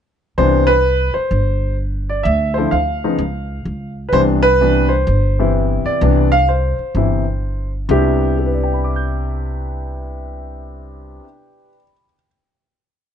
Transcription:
0.38 upright bass C2, grand piano C3 E3 B3 D4 C5
0.67 grand piano B4
1.14 grand piano C5, muted upright bass stroke
1.31 upright bass G1
2.10 grand piano D5
2.23 upright bass D2, grand piano E5
2.54 grand piano D3 F3 C4 C5
2.58 grand piano E4
2.71 upright bass D2, grand piano F5
3.04 grand piano C#3 F3 B3 D#4
3.18 upright bass C#2
3.65 upright bass C#2
4.09 upright bass C2, grand piano B4
4.13 grand piano C3 E3 B3 D4 C5
4.43 grand piano B4
4.61 grand piano C3 E3 B3 D4
4.89 grand piano C5
5.07 upright bass G1
5.39 grand piano C3 E3 B3 E4
5.85 grand piano D5, muted upright bass stroke
6.01 upright bass C2, grand piano C3 E3 B3 D4
6.32 grand piano F5
6.49 grand piano C5
6.79 muted upright bass stroke
6.95 upright bass G1, grand piano C3 E3 B3 E4
7.89 upright bass C2, grand piano C3 B3 D4 E4 G4
8.39 grand piano G4
8.46 grand piano B4
8.54 grand piano D5
8.63 grand piano G5
8.73 grand piano B5
8.84 grand piano D6
8.96 grand piano G6

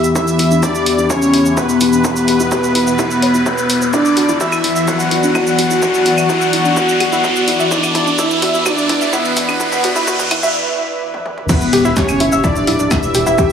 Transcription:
Already playing: analog synth pad E3 E4 B4 G5, ambient pad B3 G4 E5 B5, riser
0.04 synth arpeggio sound E5, shaker
0.15 synth arpeggio sound E4, analog synth lead E4, analog polysynth E5, kick, shaker
0.28 shaker
0.39 synth arpeggio sound E4, open hi-hat, shaker
0.51 synth arpeggio sound D4, shaker
0.63 analog synth lead D4, synth arpeggio sound E4, analog polysynth D5, kick, shaker
0.75 shaker
0.86 synth arpeggio sound G4, open hi-hat
0.98 synth arpeggio sound E4, shaker
1.10 analog synth lead C#4, synth arpeggio sound G4, analog polysynth C#5, kick, shaker
1.22 shaker
1.34 synth arpeggio sound E4, open hi-hat
1.46 synth arpeggio sound E5, shaker
1.57 analog synth lead B3, synth arpeggio sound E4, analog polysynth B4, kick, shaker
1.69 shaker
1.81 synth arpeggio sound E4, open hi-hat, shaker
1.93 synth arpeggio sound D4, shaker
2.04 synth arpeggio sound E4, kick, shaker
2.16 shaker
2.28 synth arpeggio sound G4, open hi-hat, shaker
2.40 synth arpeggio sound E4, shaker
2.52 synth arpeggio sound G4, kick, shaker
2.64 shaker
2.75 synth arpeggio sound E4, open hi-hat
2.87 synth arpeggio sound E5, shaker
2.99 synth arpeggio sound E4, kick, shaker
3.11 shaker
3.22 synth arpeggio sound C#5, open hi-hat
3.34 synth arpeggio sound E4, shaker
3.46 synth arpeggio sound C#5, kick, shaker
3.58 shaker
3.70 synth arpeggio sound B4, open hi-hat, shaker
3.82 synth arpeggio sound B4, shaker
3.93 analog synth pad E3 E4 B4 D5, ambient pad E3, analog synth lead D4, synth arpeggio sound E4, analog polysynth D5, kick, shaker
4.05 shaker
4.17 ambient pad B3 D5, synth arpeggio sound F#4, open hi-hat, shaker
4.23 ambient pad F#4
4.29 synth arpeggio sound E4, shaker
4.40 analog synth lead E4, analog polysynth E5, kick, shaker
4.52 claves, shaker
4.64 synth arpeggio sound E4, open hi-hat
4.76 synth arpeggio sound E5, shaker
4.88 synth arpeggio sound E4, analog synth lead F#4, analog polysynth F#5, kick, shaker
5.00 shaker
5.11 synth arpeggio sound E4, open hi-hat
5.23 synth arpeggio sound D4, shaker
5.35 synth arpeggio sound E4, analog synth lead F#4, analog polysynth F#5, kick, claves, shaker
5.47 shaker
5.59 synth arpeggio sound F#4, open hi-hat, shaker
5.71 synth arpeggio sound E4, shaker
5.82 synth arpeggio sound F#4, kick, shaker
5.94 shaker
6.06 synth arpeggio sound E4, open hi-hat, shaker
6.18 synth arpeggio sound E5, claves, shaker
6.29 synth arpeggio sound E4, kick, shaker
6.41 shaker
6.53 synth arpeggio sound E4, open hi-hat
6.65 synth arpeggio sound D4, shaker
6.77 synth arpeggio sound E4, kick, shaker
6.89 shaker
7.00 synth arpeggio sound F#4, open hi-hat, claves
7.12 synth arpeggio sound E4, shaker
7.24 synth arpeggio sound F#4, kick, shaker
7.36 shaker
7.48 synth arpeggio sound E4, open hi-hat, shaker
7.60 synth arpeggio sound E5, shaker
7.71 analog synth lead D4, synth arpeggio sound E4, analog polysynth D5, kick, shaker
7.83 claves, shaker
7.95 synth arpeggio sound E4, kick, open hi-hat, shaker
8.07 synth arpeggio sound D4, shaker
8.18 analog synth lead E4, synth arpeggio sound E4, analog polysynth E5, kick, shaker
8.31 shaker
8.42 synth arpeggio sound F#4, kick, open hi-hat
8.54 synth arpeggio sound E4, shaker
8.66 analog synth lead D4, synth arpeggio sound F#4, analog polysynth D5, kick, claves, shaker
8.78 shaker
8.89 synth arpeggio sound E4, kick, open hi-hat
9.01 synth arpeggio sound E5, shaker
9.13 analog synth lead B3, synth arpeggio sound E4, analog polysynth B4, kick, shaker
9.25 shaker
9.37 synth arpeggio sound E4, kick, open hi-hat, shaker
9.49 synth arpeggio sound D4, claves, shaker
9.60 synth arpeggio sound E4, kick, shaker
9.72 kick, shaker
9.84 synth arpeggio sound F#4, kick, open hi-hat, shaker
9.96 synth arpeggio sound E4, kick, shaker
10.07 synth arpeggio sound F#4, kick, shaker
10.19 kick, shaker
10.31 synth arpeggio sound E4, kick, open hi-hat, claves, shaker
10.43 synth arpeggio sound E5, kick, shaker
11.14 high tom
11.26 mid tom
11.38 mid tom
11.49 analog synth lead B3, synth arpeggio sound E4 E5, analog synth pad E4 G4 B4, analog polysynth B4, kick, crash, impact, shaker
11.60 analog synth bass E1, ambient pad G4, shaker
11.73 analog synth bass E1, synth arpeggio sound G4 G5, open hi-hat, shaker
11.85 analog synth bass E1, synth arpeggio sound E4 E5, shaker
11.97 analog synth lead C#4, synth arpeggio sound G4 G5, analog polysynth C#5, kick, snare, shaker
12.09 analog synth bass F#1, claves, shaker
12.19 analog synth bass F#1, synth arpeggio sound E4 E5, ambient pad E5, open hi-hat
12.32 analog synth bass F#1, synth arpeggio sound E5 E6, shaker
12.44 analog synth lead D4, synth arpeggio sound E4 E5, analog polysynth D5, kick, shaker
12.56 analog synth bass D1, shaker
12.67 analog synth bass D1, synth arpeggio sound E4 E5, open hi-hat
12.79 analog synth bass D1, synth arpeggio sound D4 D5, shaker
12.91 analog synth lead E4, synth arpeggio sound E4 E5, analog polysynth E5, kick, snare, claves, shaker
13.03 analog synth bass E1, shaker
13.15 analog synth bass E1, synth arpeggio sound G4 G5, open hi-hat, shaker
13.27 analog synth bass E1, synth arpeggio sound E4 E5, shaker
13.38 synth arpeggio sound G4 G5, kick, shaker

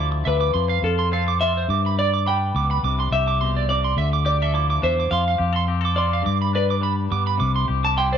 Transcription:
Already playing: fingered electric bass D2, clean electric guitar D3 F3 E4 A4 D5
0.12 muted clean electric guitar stroke
0.25 fingered electric bass D2, clean electric guitar D4 B4 E5
0.41 clean electric guitar D6
0.54 fingered electric bass F2, clean electric guitar F3 C6
0.69 clean electric guitar F5
0.82 fingered electric bass F2, clean electric guitar F4 A4
0.99 clean electric guitar C6
1.12 clean electric guitar C4 A4 F5
1.28 clean electric guitar D6
1.41 clean electric guitar F4 E5 C6
1.57 clean electric guitar C5
1.69 fingered electric bass G2, clean electric guitar G2 D6
1.86 clean electric guitar B5
1.99 clean electric guitar D5
2.14 clean electric guitar D6
2.27 clean electric guitar G3 D4 G5 B5
2.55 fingered electric bass C#2, clean electric guitar B3 D6
2.71 clean electric guitar B5
2.83 fingered electric bass C2, clean electric guitar C3 D6
3.00 clean electric guitar C6
3.11 fingered electric bass C2, clean electric guitar G4 E5
3.28 clean electric guitar D6
3.41 clean electric guitar B2 C6
3.57 clean electric guitar D5
3.69 clean electric guitar C3 D5 D6
3.84 clean electric guitar C6
3.97 fingered electric bass D2, clean electric guitar D3 E5
4.13 clean electric guitar D6
4.25 clean electric guitar G4 D5 D6
4.42 clean electric guitar A4 E5
4.54 clean electric guitar F3 E4 D6
4.70 clean electric guitar D6
4.82 fingered electric bass E2, clean electric guitar D4 C5 E5
5.00 clean electric guitar D6
5.10 fingered electric bass F2, clean electric guitar F3 F5 C6
5.28 clean electric guitar F5
5.38 fingered electric bass F2, clean electric guitar G4
5.53 clean electric guitar A4 C6
5.68 clean electric guitar C4 G4
5.81 clean electric guitar A4
5.85 clean electric guitar D6
5.95 clean electric guitar F4 D5 C6
6.13 clean electric guitar F5
6.22 clean electric guitar G2 D6, fingered electric bass G2
6.42 clean electric guitar B5
6.53 clean electric guitar D4 B4 D5
6.71 clean electric guitar D6
6.81 clean electric guitar G3 D4 B5
7.11 fingered electric bass G2, clean electric guitar B3 D6
7.27 clean electric guitar B5
7.38 fingered electric bass C2, clean electric guitar C3 D6
7.56 clean electric guitar C6
7.68 fingered electric bass C2, clean electric guitar G4
7.84 clean electric guitar A5 D6
7.96 clean electric guitar G3 E4 G5 C6
8.12 clean electric guitar C5 D5

